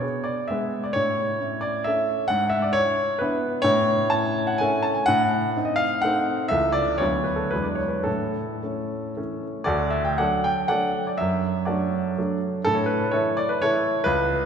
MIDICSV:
0, 0, Header, 1, 2, 480
1, 0, Start_track
1, 0, Key_signature, 3, "major"
1, 0, Tempo, 461538
1, 997, Time_signature, 3, 2, 24, 8
1, 1949, Tempo, 446097
1, 3869, Tempo, 475059
1, 6749, Tempo, 508475
1, 7709, Tempo, 552486
1, 9149, Tempo, 512383
1, 9631, Key_signature, 2, "major"
1, 10589, Tempo, 485830
1, 13469, Tempo, 451807
1, 14341, End_track
2, 0, Start_track
2, 0, Title_t, "Grand piano"
2, 0, Program_c, 0, 0
2, 0, Control_c, 0, 64, 127
2, 0, Note_on_c, 0, 73, 72
2, 14, Note_on_c, 0, 59, 38
2, 26, Note_on_c, 0, 68, 42
2, 46, Control_c, 0, 64, 0
2, 246, Note_on_c, 0, 74, 70
2, 268, Note_off_c, 0, 73, 0
2, 479, Note_off_c, 0, 59, 0
2, 485, Note_off_c, 0, 68, 0
2, 495, Note_on_c, 0, 76, 75
2, 510, Note_off_c, 0, 74, 0
2, 526, Note_on_c, 0, 56, 51
2, 529, Note_on_c, 0, 59, 46
2, 539, Note_on_c, 0, 68, 56
2, 865, Note_off_c, 0, 76, 0
2, 869, Note_on_c, 0, 74, 68
2, 954, Note_off_c, 0, 56, 0
2, 955, Note_off_c, 0, 59, 0
2, 960, Note_off_c, 0, 68, 0
2, 968, Note_on_c, 0, 73, 93
2, 990, Note_off_c, 0, 74, 0
2, 996, Note_on_c, 0, 45, 56
2, 1163, Control_c, 0, 64, 127
2, 1453, Note_off_c, 0, 45, 0
2, 1454, Note_on_c, 0, 61, 37
2, 1459, Note_on_c, 0, 64, 47
2, 1672, Note_on_c, 0, 74, 75
2, 1698, Note_off_c, 0, 73, 0
2, 1900, Note_off_c, 0, 61, 0
2, 1903, Note_off_c, 0, 64, 0
2, 1917, Note_on_c, 0, 76, 87
2, 1928, Note_off_c, 0, 74, 0
2, 1947, Note_on_c, 0, 57, 52
2, 1950, Note_on_c, 0, 64, 59
2, 1951, Note_on_c, 0, 61, 55
2, 1957, Control_c, 0, 64, 0
2, 2371, Note_off_c, 0, 57, 0
2, 2373, Note_off_c, 0, 61, 0
2, 2373, Note_off_c, 0, 64, 0
2, 2383, Note_on_c, 0, 78, 103
2, 2399, Note_off_c, 0, 76, 0
2, 2409, Note_on_c, 0, 44, 71
2, 2608, Control_c, 0, 64, 127
2, 2617, Note_on_c, 0, 76, 92
2, 2636, Note_off_c, 0, 78, 0
2, 2753, Note_on_c, 0, 74, 68
2, 2758, Note_off_c, 0, 76, 0
2, 2867, Note_on_c, 0, 73, 102
2, 2882, Note_off_c, 0, 44, 0
2, 2889, Note_off_c, 0, 74, 0
2, 2894, Note_on_c, 0, 62, 43
2, 2904, Note_on_c, 0, 64, 53
2, 2913, Control_c, 0, 64, 0
2, 3347, Note_off_c, 0, 62, 0
2, 3352, Note_off_c, 0, 64, 0
2, 3360, Note_on_c, 0, 71, 75
2, 3377, Note_off_c, 0, 73, 0
2, 3392, Note_on_c, 0, 59, 59
2, 3392, Note_on_c, 0, 64, 63
2, 3393, Note_on_c, 0, 62, 57
2, 3826, Note_off_c, 0, 59, 0
2, 3826, Note_off_c, 0, 62, 0
2, 3826, Note_off_c, 0, 64, 0
2, 3826, Note_on_c, 0, 73, 112
2, 3851, Note_on_c, 0, 45, 82
2, 3853, Note_off_c, 0, 71, 0
2, 4073, Control_c, 0, 64, 127
2, 4314, Note_on_c, 0, 81, 95
2, 4330, Note_off_c, 0, 45, 0
2, 4333, Note_off_c, 0, 73, 0
2, 4342, Note_on_c, 0, 61, 49
2, 4347, Note_on_c, 0, 64, 48
2, 4690, Note_on_c, 0, 78, 77
2, 4707, Note_off_c, 0, 81, 0
2, 4800, Note_off_c, 0, 61, 0
2, 4802, Note_off_c, 0, 64, 0
2, 4802, Note_on_c, 0, 80, 92
2, 4828, Note_off_c, 0, 78, 0
2, 4830, Note_on_c, 0, 57, 67
2, 4838, Note_on_c, 0, 61, 59
2, 4842, Note_on_c, 0, 64, 64
2, 4856, Control_c, 0, 64, 0
2, 5048, Note_on_c, 0, 81, 82
2, 5058, Note_off_c, 0, 80, 0
2, 5169, Note_on_c, 0, 80, 76
2, 5178, Note_off_c, 0, 81, 0
2, 5259, Note_off_c, 0, 57, 0
2, 5263, Note_off_c, 0, 61, 0
2, 5265, Note_off_c, 0, 64, 0
2, 5283, Note_on_c, 0, 78, 116
2, 5295, Note_off_c, 0, 80, 0
2, 5306, Note_on_c, 0, 45, 78
2, 5467, Control_c, 0, 64, 127
2, 5771, Note_off_c, 0, 45, 0
2, 5791, Note_on_c, 0, 60, 45
2, 5798, Note_on_c, 0, 63, 59
2, 5800, Control_c, 0, 64, 0
2, 5881, Note_on_c, 0, 75, 69
2, 5898, Note_off_c, 0, 78, 0
2, 5991, Note_on_c, 0, 77, 100
2, 6018, Note_off_c, 0, 75, 0
2, 6238, Note_off_c, 0, 60, 0
2, 6242, Note_off_c, 0, 63, 0
2, 6250, Note_on_c, 0, 78, 101
2, 6255, Note_off_c, 0, 77, 0
2, 6276, Note_on_c, 0, 57, 59
2, 6282, Note_on_c, 0, 60, 60
2, 6289, Note_on_c, 0, 63, 62
2, 6710, Note_off_c, 0, 57, 0
2, 6713, Note_off_c, 0, 60, 0
2, 6716, Note_off_c, 0, 63, 0
2, 6724, Note_on_c, 0, 76, 100
2, 6738, Note_off_c, 0, 78, 0
2, 6745, Note_on_c, 0, 52, 54
2, 6751, Note_on_c, 0, 37, 71
2, 6753, Note_on_c, 0, 57, 57
2, 6759, Note_on_c, 0, 64, 47
2, 6898, Control_c, 0, 64, 127
2, 6952, Note_on_c, 0, 74, 92
2, 6962, Note_off_c, 0, 76, 0
2, 7177, Note_off_c, 0, 52, 0
2, 7180, Note_off_c, 0, 57, 0
2, 7183, Note_off_c, 0, 64, 0
2, 7192, Note_on_c, 0, 73, 88
2, 7203, Note_off_c, 0, 37, 0
2, 7206, Note_off_c, 0, 74, 0
2, 7220, Note_on_c, 0, 54, 43
2, 7221, Note_on_c, 0, 38, 57
2, 7223, Note_on_c, 0, 59, 46
2, 7224, Note_on_c, 0, 62, 43
2, 7231, Control_c, 0, 64, 0
2, 7430, Control_c, 0, 64, 127
2, 7437, Note_on_c, 0, 71, 62
2, 7452, Note_off_c, 0, 73, 0
2, 7552, Note_on_c, 0, 69, 63
2, 7573, Note_off_c, 0, 71, 0
2, 7674, Note_off_c, 0, 54, 0
2, 7675, Note_off_c, 0, 59, 0
2, 7676, Note_off_c, 0, 62, 0
2, 7690, Note_on_c, 0, 71, 75
2, 7692, Note_off_c, 0, 69, 0
2, 7697, Note_off_c, 0, 38, 0
2, 7714, Note_on_c, 0, 40, 52
2, 7719, Note_on_c, 0, 54, 39
2, 7719, Note_on_c, 0, 56, 40
2, 7723, Control_c, 0, 64, 0
2, 7725, Note_on_c, 0, 62, 38
2, 7796, Note_on_c, 0, 74, 55
2, 7815, Note_off_c, 0, 71, 0
2, 7906, Note_on_c, 0, 73, 63
2, 7921, Control_c, 0, 64, 127
2, 7927, Note_off_c, 0, 74, 0
2, 8018, Note_on_c, 0, 71, 56
2, 8042, Note_off_c, 0, 73, 0
2, 8149, Note_off_c, 0, 54, 0
2, 8149, Note_off_c, 0, 56, 0
2, 8152, Note_off_c, 0, 62, 0
2, 8152, Note_on_c, 0, 69, 72
2, 8158, Note_off_c, 0, 71, 0
2, 8168, Note_off_c, 0, 40, 0
2, 8174, Note_on_c, 0, 45, 56
2, 8192, Control_c, 0, 64, 0
2, 8395, Control_c, 0, 64, 127
2, 8657, Note_off_c, 0, 45, 0
2, 8668, Note_on_c, 0, 57, 37
2, 8674, Note_on_c, 0, 61, 42
2, 9112, Note_off_c, 0, 57, 0
2, 9115, Note_off_c, 0, 61, 0
2, 9134, Note_on_c, 0, 52, 38
2, 9137, Note_on_c, 0, 57, 43
2, 9140, Note_on_c, 0, 61, 52
2, 9161, Control_c, 0, 64, 0
2, 9381, Note_off_c, 0, 69, 0
2, 9580, Note_on_c, 0, 74, 90
2, 9586, Note_off_c, 0, 52, 0
2, 9587, Note_off_c, 0, 57, 0
2, 9589, Note_off_c, 0, 61, 0
2, 9591, Note_on_c, 0, 69, 71
2, 9594, Note_on_c, 0, 66, 67
2, 9603, Note_on_c, 0, 38, 75
2, 9823, Control_c, 0, 64, 127
2, 9824, Note_on_c, 0, 76, 82
2, 9827, Note_off_c, 0, 69, 0
2, 9829, Note_off_c, 0, 66, 0
2, 9839, Note_off_c, 0, 74, 0
2, 9958, Note_on_c, 0, 79, 68
2, 9967, Note_off_c, 0, 76, 0
2, 10083, Note_off_c, 0, 38, 0
2, 10083, Note_on_c, 0, 78, 86
2, 10088, Note_on_c, 0, 74, 63
2, 10092, Note_on_c, 0, 69, 59
2, 10097, Note_off_c, 0, 79, 0
2, 10101, Note_on_c, 0, 54, 47
2, 10105, Note_on_c, 0, 57, 47
2, 10106, Note_on_c, 0, 62, 51
2, 10122, Control_c, 0, 64, 0
2, 10326, Note_off_c, 0, 74, 0
2, 10328, Note_on_c, 0, 79, 87
2, 10329, Note_off_c, 0, 69, 0
2, 10342, Note_off_c, 0, 78, 0
2, 10546, Note_off_c, 0, 54, 0
2, 10548, Note_off_c, 0, 57, 0
2, 10549, Note_off_c, 0, 62, 0
2, 10553, Note_on_c, 0, 78, 95
2, 10557, Note_on_c, 0, 69, 63
2, 10564, Note_on_c, 0, 74, 66
2, 10575, Note_off_c, 0, 79, 0
2, 10580, Note_on_c, 0, 62, 52
2, 10581, Note_on_c, 0, 54, 42
2, 10583, Note_on_c, 0, 57, 42
2, 10905, Note_off_c, 0, 69, 0
2, 10908, Note_off_c, 0, 74, 0
2, 10928, Note_off_c, 0, 78, 0
2, 10933, Note_on_c, 0, 74, 63
2, 11019, Note_off_c, 0, 62, 0
2, 11020, Note_off_c, 0, 54, 0
2, 11021, Note_off_c, 0, 57, 0
2, 11039, Note_on_c, 0, 76, 92
2, 11056, Note_off_c, 0, 74, 0
2, 11067, Note_on_c, 0, 42, 69
2, 11269, Control_c, 0, 64, 127
2, 11511, Note_on_c, 0, 74, 67
2, 11522, Note_on_c, 0, 66, 58
2, 11527, Note_on_c, 0, 69, 57
2, 11528, Note_off_c, 0, 42, 0
2, 11528, Note_off_c, 0, 76, 0
2, 11538, Note_on_c, 0, 57, 45
2, 11543, Note_on_c, 0, 54, 50
2, 11544, Note_on_c, 0, 62, 49
2, 11989, Note_off_c, 0, 57, 0
2, 11992, Note_off_c, 0, 54, 0
2, 11992, Note_off_c, 0, 62, 0
2, 12033, Note_on_c, 0, 57, 53
2, 12035, Note_on_c, 0, 54, 47
2, 12039, Control_c, 0, 64, 0
2, 12039, Note_on_c, 0, 62, 51
2, 12216, Note_off_c, 0, 66, 0
2, 12218, Note_off_c, 0, 69, 0
2, 12250, Note_off_c, 0, 74, 0
2, 12459, Note_off_c, 0, 57, 0
2, 12460, Note_off_c, 0, 54, 0
2, 12462, Note_off_c, 0, 62, 0
2, 12491, Note_on_c, 0, 69, 109
2, 12512, Note_on_c, 0, 45, 71
2, 12591, Note_on_c, 0, 73, 64
2, 12609, Note_off_c, 0, 69, 0
2, 12656, Control_c, 0, 64, 127
2, 12703, Note_on_c, 0, 71, 82
2, 12718, Note_off_c, 0, 73, 0
2, 12954, Note_on_c, 0, 73, 83
2, 12961, Note_off_c, 0, 71, 0
2, 12968, Note_off_c, 0, 45, 0
2, 12969, Note_on_c, 0, 69, 67
2, 12972, Note_on_c, 0, 64, 66
2, 12976, Note_on_c, 0, 52, 46
2, 12983, Note_on_c, 0, 57, 54
2, 12986, Control_c, 0, 64, 0
2, 13205, Note_on_c, 0, 74, 86
2, 13207, Note_off_c, 0, 69, 0
2, 13209, Note_off_c, 0, 64, 0
2, 13218, Note_off_c, 0, 73, 0
2, 13325, Note_on_c, 0, 71, 77
2, 13339, Note_off_c, 0, 74, 0
2, 13430, Note_off_c, 0, 52, 0
2, 13433, Note_off_c, 0, 57, 0
2, 13450, Note_on_c, 0, 73, 98
2, 13456, Note_off_c, 0, 71, 0
2, 13460, Note_on_c, 0, 69, 67
2, 13463, Note_on_c, 0, 64, 70
2, 13469, Note_on_c, 0, 52, 50
2, 13478, Note_on_c, 0, 57, 53
2, 13898, Note_on_c, 0, 71, 100
2, 13900, Note_off_c, 0, 52, 0
2, 13904, Note_off_c, 0, 69, 0
2, 13905, Note_off_c, 0, 57, 0
2, 13906, Note_off_c, 0, 64, 0
2, 13919, Note_on_c, 0, 37, 83
2, 13932, Note_off_c, 0, 73, 0
2, 14107, Control_c, 0, 64, 127
2, 14341, Note_off_c, 0, 37, 0
2, 14341, Note_off_c, 0, 71, 0
2, 14341, End_track
0, 0, End_of_file